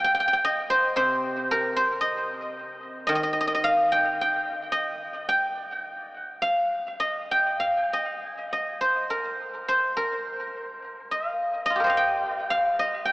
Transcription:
Already playing: D#5 F5
0.04 G5
0.15 G5
0.20 G5
0.28 G5
0.33 G5
0.45 D#5
0.70 C5
0.96 C3 C5
1.51 A#4
1.76 C5
2.01 D#5
3.07 D#3 D#5
3.15 D#5
3.23 D#5
3.33 D#5
3.41 D#5
3.47 D#5
3.55 D#5
3.64 F5
3.92 G5
4.21 G5
4.72 D#5
5.29 G5
6.42 F5
7.00 D#5
7.31 G5
7.60 F5
7.93 D#5
8.53 D#5
8.81 C5
9.10 A#4
9.68 C5
9.97 A#4
11.11 F5
11.66 D#5
11.70 F4
11.76 G4
11.80 A#4
11.84 C5 D#5
11.90 F5
11.97 G5
12.50 F5
12.79 D#5
13.05 G5

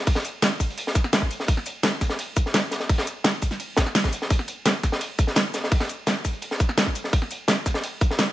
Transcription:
0.06 kick, closed hi-hat, open hi-hat, ride bell
0.15 snare
0.25 closed hi-hat, shaker
0.42 snare, closed hi-hat, ride bell, shaker
0.60 kick, closed hi-hat, open hi-hat, shaker
0.70 closed hi-hat
0.78 closed hi-hat, ride bell
0.87 snare
0.95 kick, closed hi-hat, shaker
1.04 snare
1.13 snare, closed hi-hat, ride bell
1.22 kick
1.31 closed hi-hat, shaker
1.40 snare
1.48 kick, closed hi-hat, ride bell
1.57 snare
1.66 closed hi-hat, shaker
1.83 snare, closed hi-hat, ride bell, shaker
2.01 kick, snare, closed hi-hat, shaker
2.09 snare
2.19 closed hi-hat, ride bell
2.36 kick, closed hi-hat, shaker
2.46 snare
2.54 snare, closed hi-hat, ride bell
2.71 snare, closed hi-hat, shaker
2.80 snare
2.89 kick, closed hi-hat, open hi-hat, ride bell
2.98 snare
3.07 closed hi-hat, shaker
3.24 snare, closed hi-hat, ride bell, shaker
3.42 kick, closed hi-hat, open hi-hat, shaker
3.51 snare, closed hi-hat
3.60 closed hi-hat, ride bell
3.77 kick, snare, closed hi-hat, shaker
3.86 snare, shaker
3.95 snare, closed hi-hat, ride bell
4.04 kick, snare, shaker
4.13 closed hi-hat, shaker
4.22 snare
4.30 kick, closed hi-hat, ride bell
4.39 snare
4.48 closed hi-hat, shaker
4.65 snare, closed hi-hat, ride bell, shaker
4.83 kick, snare, closed hi-hat, shaker
4.92 snare
5.01 closed hi-hat, ride bell
5.19 kick, closed hi-hat, shaker
5.27 snare
5.36 snare, closed hi-hat, ride bell
5.54 snare, closed hi-hat, shaker
5.64 snare
5.71 kick, closed hi-hat, open hi-hat, ride bell
5.80 snare
5.89 closed hi-hat, shaker
6.07 snare, closed hi-hat, ride bell, shaker
6.25 kick, closed hi-hat, open hi-hat, shaker
6.33 closed hi-hat
6.42 closed hi-hat, ride bell
6.51 snare
6.60 kick, closed hi-hat, shaker
6.69 snare
6.78 snare, closed hi-hat, ride bell
6.86 kick
6.95 closed hi-hat, shaker
7.04 snare
7.13 kick, closed hi-hat, ride bell
7.22 snare
7.31 closed hi-hat, shaker
7.48 snare, closed hi-hat, ride bell, shaker
7.66 kick, snare, closed hi-hat, shaker
7.74 snare
7.83 closed hi-hat, ride bell
8.01 kick, closed hi-hat, shaker
8.11 snare
8.19 snare, closed hi-hat, ride bell

